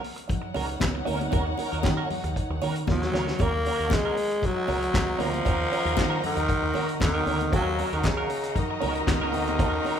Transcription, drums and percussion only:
0.04 open hi-hat
0.17 closed hi-hat
0.29 kick, closed hi-hat, low conga
0.55 open hi-hat, muted conga
0.69 closed hi-hat
0.80 kick, snare, clap, closed hi-hat, high conga
1.06 open hi-hat, high conga
1.21 closed hi-hat, high conga
1.32 kick, closed hi-hat, muted conga
1.57 open hi-hat, muted conga
1.73 closed hi-hat
1.83 kick, snare, clap, closed hi-hat, high conga
2.10 open hi-hat, low conga
2.24 closed hi-hat
2.36 kick, closed hi-hat
2.62 open hi-hat, muted conga
2.76 closed hi-hat
2.87 kick, snare, high conga
3.02 snare
3.13 snare, high conga
3.28 snare
3.39 kick, closed hi-hat, muted conga
3.66 open hi-hat
3.80 closed hi-hat
3.90 kick, snare, clap, closed hi-hat, high conga
4.17 open hi-hat
4.31 closed hi-hat
4.42 kick, closed hi-hat, low conga
4.68 open hi-hat, muted conga
4.82 closed hi-hat
4.94 kick, snare, clap, closed hi-hat, high conga
5.20 open hi-hat, high conga
5.34 closed hi-hat, high conga
5.45 kick, closed hi-hat, muted conga
5.72 open hi-hat
5.87 closed hi-hat
5.97 kick, snare, clap, closed hi-hat, high conga
6.23 open hi-hat, low conga
6.37 closed hi-hat
6.49 kick, closed hi-hat
6.74 open hi-hat, muted conga
6.89 closed hi-hat
7.00 kick, snare, clap, closed hi-hat, high conga
7.26 open hi-hat, high conga
7.41 closed hi-hat, high conga
7.53 kick, closed hi-hat, muted conga
7.79 open hi-hat, muted conga
7.93 closed hi-hat
8.03 kick, snare, clap, closed hi-hat, high conga
8.30 open hi-hat
8.44 closed hi-hat
8.56 kick, closed hi-hat, low conga
8.81 open hi-hat, muted conga
8.95 closed hi-hat
9.07 kick, snare, clap, closed hi-hat, high conga
9.33 open hi-hat, high conga
9.48 closed hi-hat, high conga
9.59 kick, closed hi-hat, muted conga
9.85 open hi-hat, muted conga

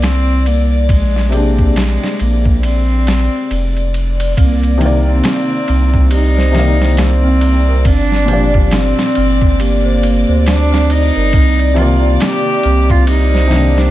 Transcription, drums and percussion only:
0.02 snare, open hi-hat
0.46 ride
0.89 kick, ride
1.16 snare
1.32 ride
1.59 kick
1.76 snare, ride
2.04 snare
2.19 ride
2.45 kick
2.63 ride
3.07 snare, ride
3.51 ride
3.77 ride
3.94 ride
4.20 ride
4.37 kick, ride
4.63 ride
4.81 ride
5.24 snare, ride
5.68 ride
5.94 kick
6.11 ride
6.38 snare
6.54 snare, ride
6.81 snare
6.97 snare, open hi-hat
7.41 ride
7.85 kick, ride
8.12 snare
8.28 ride
8.54 kick
8.71 snare, ride
8.99 snare
9.15 ride
9.42 kick
9.60 ride
10.03 ride
10.46 snare, ride
10.74 snare
10.90 ride
11.33 kick, ride
11.59 ride
11.76 ride
12.20 snare, ride
12.63 ride
12.90 kick
13.07 ride
13.34 snare
13.51 snare, ride
13.78 snare

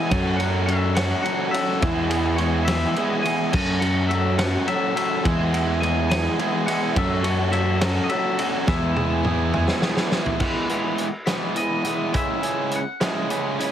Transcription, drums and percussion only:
0.11 kick, ride
0.40 ride
0.68 ride
0.97 snare, ride
1.26 ride
1.54 ride
1.82 kick, ride
2.11 ride
2.38 ride
2.68 snare, ride
2.96 ride
3.25 ride
3.53 kick, crash
3.82 ride
4.11 ride
4.39 snare, ride
4.68 ride
4.97 ride
5.25 kick, ride
5.54 ride
5.83 ride
6.11 snare, ride
6.39 ride
6.68 ride
6.96 kick, ride
7.24 ride
7.53 ride
7.81 snare, ride
8.09 ride
8.39 ride
8.67 kick, snare
8.96 high tom
9.25 mid tom
9.54 mid tom
9.68 snare
9.82 snare
9.97 snare
10.12 snare
10.26 floor tom
10.40 kick, crash
10.69 closed hi-hat
10.98 closed hi-hat
11.27 snare, closed hi-hat
11.56 closed hi-hat
11.85 closed hi-hat
12.14 kick, closed hi-hat
12.43 closed hi-hat
12.71 closed hi-hat
13.01 snare, closed hi-hat
13.30 closed hi-hat
13.60 closed hi-hat

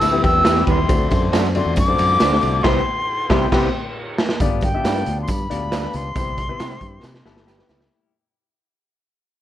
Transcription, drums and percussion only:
0.01 ride, tambourine, muted conga, high conga
0.24 kick, ride, tambourine
0.37 high conga
0.45 snare, ride, tambourine
0.56 snare, ride, high conga
0.67 kick, ride, tambourine, low conga
0.89 kick, ride, tambourine, muted conga
1.02 muted conga
1.11 kick, ride, tambourine
1.33 snare, ride, tambourine, high conga
1.44 snare, muted conga, high conga
1.55 ride, tambourine, low conga
1.76 kick, ride, tambourine, muted conga, high conga
1.88 muted conga
1.98 ride, tambourine
2.10 high conga
2.19 snare, ride, tambourine, muted conga
2.30 snare, muted conga, high conga
2.41 ride, tambourine, low conga
2.64 kick, snare, crash
3.30 kick, snare
3.52 kick, snare, crash
4.18 snare
4.29 snare
4.40 kick, closed hi-hat, tambourine, low conga
4.50 high conga
4.61 kick, closed hi-hat, tambourine
4.84 snare, closed hi-hat, tambourine, muted conga, high conga
4.95 closed hi-hat, high conga
5.05 closed hi-hat, tambourine, low conga
5.27 kick, closed hi-hat, tambourine, high conga
5.39 muted conga
5.51 closed hi-hat, tambourine
5.62 high conga
5.72 snare, closed hi-hat, tambourine
5.84 muted conga, high conga
5.93 closed hi-hat, tambourine, low conga
6.15 kick, closed hi-hat, tambourine, muted conga, low conga
6.27 muted conga, high conga
6.37 kick, closed hi-hat, tambourine
6.59 snare, closed hi-hat, tambourine, high conga
6.70 snare, closed hi-hat, muted conga, high conga
6.81 kick, closed hi-hat, tambourine, low conga
7.03 snare, tambourine, muted conga, high conga
7.15 snare
7.26 snare, tambourine
7.37 snare, high conga
7.48 snare, tambourine
7.59 snare, high conga
7.69 snare, tambourine, low conga
7.81 snare

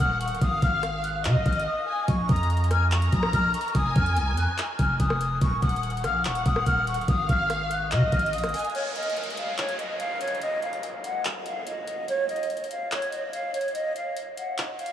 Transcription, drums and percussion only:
0.21 closed hi-hat
0.28 closed hi-hat
0.35 closed hi-hat
0.41 kick, closed hi-hat
0.62 kick, closed hi-hat
0.83 cross-stick, closed hi-hat
1.04 closed hi-hat
1.25 clap, closed hi-hat
1.46 kick, closed hi-hat
1.53 closed hi-hat
1.60 closed hi-hat
2.08 kick, closed hi-hat
2.29 kick, closed hi-hat
2.36 closed hi-hat
2.43 closed hi-hat
2.50 closed hi-hat
2.57 closed hi-hat
2.64 closed hi-hat
2.71 cross-stick, closed hi-hat
2.92 clap, closed hi-hat
3.02 closed hi-hat
3.12 kick, closed hi-hat
3.23 cross-stick
3.33 kick, closed hi-hat
3.54 closed hi-hat
3.61 closed hi-hat
3.68 closed hi-hat
3.75 kick, closed hi-hat
3.96 kick, closed hi-hat
4.06 closed hi-hat
4.17 closed hi-hat
4.37 closed hi-hat
4.58 clap, closed hi-hat
4.79 kick, closed hi-hat
5.00 kick, closed hi-hat
5.10 cross-stick
5.21 closed hi-hat
5.41 kick, closed hi-hat
5.62 kick, closed hi-hat
5.69 closed hi-hat
5.76 closed hi-hat
5.83 closed hi-hat
5.90 closed hi-hat
5.97 closed hi-hat
6.04 cross-stick, closed hi-hat
6.25 clap, closed hi-hat
6.35 closed hi-hat
6.46 kick, closed hi-hat
6.56 cross-stick
6.66 kick, closed hi-hat
6.87 closed hi-hat
6.94 closed hi-hat
7.01 closed hi-hat
7.08 kick, closed hi-hat
7.29 kick, closed hi-hat
7.50 cross-stick, closed hi-hat
7.71 closed hi-hat
7.91 clap, closed hi-hat
8.12 kick, closed hi-hat
8.19 closed hi-hat
8.26 closed hi-hat
8.33 closed hi-hat
8.38 closed hi-hat
8.44 cross-stick, closed hi-hat
8.49 closed hi-hat
8.54 closed hi-hat, open hi-hat
8.59 closed hi-hat
8.64 closed hi-hat
8.70 closed hi-hat
8.75 closed hi-hat
8.96 closed hi-hat
9.03 closed hi-hat
9.10 closed hi-hat
9.17 closed hi-hat
9.23 closed hi-hat
9.30 closed hi-hat
9.37 closed hi-hat
9.58 clap, closed hi-hat
9.69 closed hi-hat
9.79 closed hi-hat
10.00 closed hi-hat
10.21 closed hi-hat
10.28 closed hi-hat
10.35 closed hi-hat
10.42 closed hi-hat
10.62 closed hi-hat
10.73 closed hi-hat
10.83 closed hi-hat
11.04 closed hi-hat
11.25 clap, closed hi-hat
11.46 closed hi-hat
11.67 closed hi-hat
11.88 closed hi-hat
12.08 closed hi-hat
12.29 closed hi-hat
12.36 closed hi-hat
12.43 closed hi-hat
12.50 closed hi-hat
12.57 closed hi-hat
12.64 closed hi-hat
12.71 closed hi-hat
12.92 clap, closed hi-hat
13.02 closed hi-hat
13.12 closed hi-hat
13.33 closed hi-hat
13.54 closed hi-hat
13.61 closed hi-hat
13.68 closed hi-hat
13.75 closed hi-hat
13.96 closed hi-hat
14.17 closed hi-hat
14.37 closed hi-hat
14.58 clap, closed hi-hat
14.79 closed hi-hat
14.86 closed hi-hat

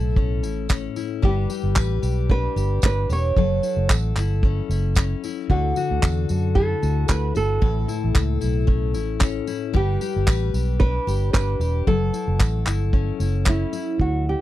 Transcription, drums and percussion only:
0.16 kick
0.44 tambourine
0.69 kick, clap, tambourine
0.96 tambourine
1.23 kick
1.50 tambourine
1.76 kick, clap, tambourine
2.03 tambourine
2.30 kick
2.57 tambourine
2.82 kick, clap, tambourine
3.10 tambourine
3.37 kick
3.63 tambourine
3.90 kick, clap, tambourine
4.16 clap, tambourine
4.43 kick
4.71 tambourine
4.95 kick, clap, tambourine
5.24 tambourine
5.50 kick
5.76 tambourine
6.03 kick, clap, tambourine
6.29 tambourine
6.56 kick
6.83 tambourine
7.08 kick, clap, tambourine
7.36 tambourine
7.62 kick
7.89 tambourine
8.15 kick, clap, tambourine
8.41 tambourine
8.68 kick
8.94 tambourine
9.21 kick, clap, tambourine
9.47 tambourine
9.74 kick
10.01 tambourine
10.27 kick, clap, tambourine
10.54 tambourine
10.81 kick
11.08 tambourine
11.33 kick, clap, tambourine
11.61 tambourine
11.87 kick
12.14 tambourine
12.40 kick, clap, tambourine
12.66 clap, tambourine
12.93 kick
13.20 tambourine
13.45 kick, clap, tambourine
13.73 tambourine
13.99 kick

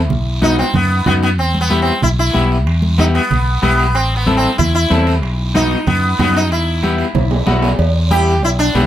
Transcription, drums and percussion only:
0.10 low conga, long guiro
0.42 high conga, short guiro
0.58 short guiro
0.74 low conga, long guiro
1.06 high conga, low conga, short guiro
1.23 short guiro
1.38 long guiro
1.55 high conga
1.70 high conga, short guiro
1.87 short guiro
2.02 low conga, long guiro
2.34 high conga, short guiro
2.51 short guiro
2.67 high timbale, long guiro
2.82 high conga
2.98 high conga, high timbale, short guiro
3.15 high timbale, short guiro
3.31 low conga, high timbale, long guiro
3.63 high conga, high timbale, short guiro
3.79 high timbale, short guiro
3.95 high timbale, long guiro
4.27 high conga, high timbale, short guiro
4.43 high timbale, short guiro
4.59 low conga, high timbale, long guiro
4.91 high conga, high timbale, low timbale, short guiro
5.07 high timbale, short guiro
5.23 high timbale, long guiro
5.55 high conga, high timbale, short guiro
5.71 high timbale, short guiro
5.87 low conga, high timbale, long guiro
6.19 high conga, low conga, high timbale, low timbale, short guiro
6.35 high timbale, short guiro
6.51 high timbale, long guiro
6.83 high conga, high timbale, short guiro
6.98 high timbale, short guiro
7.15 low conga, high timbale, long guiro
7.31 low timbale
7.47 high conga, low timbale, short guiro
7.62 low timbale, short guiro
7.79 cowbell, high conga, long guiro
8.11 cowbell, high conga, short guiro
8.27 short guiro
8.43 cowbell, high conga, long guiro
8.75 cowbell, high conga, low timbale, short guiro

